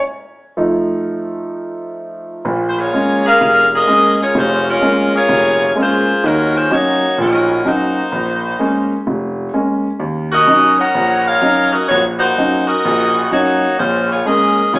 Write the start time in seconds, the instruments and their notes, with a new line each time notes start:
0.57 grand piano F3 A3 D#4
2.45 grand piano A#1 A#2
2.69 saxophone section C5
2.78 saxophone section A#3 F4 G#4 C#5
2.93 grand piano G#3 A#3 C#4
3.26 saxophone section C#4 G#4 A#4 F5
3.41 grand piano F1
3.74 saxophone section C#4 G#4 A#4 D#5
3.87 grand piano G#3 A#3 C#4
4.21 saxophone section A#3 F4 G#4 C#5
4.35 grand piano F1, saxophone section G#3 C#4 F4 C5
4.69 saxophone section G#3 C#4 F4 A#4
4.81 grand piano G#3 A#3 C#4
5.15 saxophone section A#3 F4 G#4 C#5
5.29 grand piano F1
5.76 grand piano G#3 A#3 C#4, saxophone section G#4
5.80 saxophone section A#3 F4 C5
6.24 grand piano D#2 D#3, saxophone section F#3 C#4 D#4 A#4
6.55 saxophone section G#3 C#4 F4 C5
6.71 grand piano F#3 C#4 D#4, saxophone section A#3 D#4 F#4 C#5
7.18 grand piano A#1 A#2, saxophone section F#3 C#4 D#4 A#4
7.65 grand piano F#3 C#4 D#4, saxophone section A#3 D#4 F#4 C5
8.12 grand piano A#1
8.59 grand piano G#3 A#3 C#4
9.07 grand piano F1
9.54 grand piano G#3 A#3 C#4
9.99 grand piano D#2
10.32 saxophone section C#4 F#4 A#4 D#5
10.47 grand piano F#3 C#4 D#4
10.79 saxophone section D#4 A#4 C#5 F#5
10.95 grand piano A#1
11.26 saxophone section D#4 A#4 C#5 F5
11.41 grand piano F#3 C#4 D#4
11.73 saxophone section C#4 F#4 A#4 D#5
11.88 grand piano A#1, saxophone section A#3 D#4 F#4 C#5
12.19 saxophone section A#3 D#4 F#4 C5
12.37 grand piano F#3 C#4 D#4
12.67 saxophone section C#4 F#4 A#4 D#5
12.85 grand piano A#1
13.31 grand piano F#3 C#4 D#4, saxophone section A#3 D#4 F#4 C#5
13.79 grand piano A#1, saxophone section G#3 C#4 F4 C5
14.12 saxophone section A#3 F4 G#4 C#5
14.25 grand piano G#3 A#3 C#4, saxophone section C#4 G#4 A#4 D#5
14.74 grand piano F1, saxophone section A#3 F4 G#4 C#5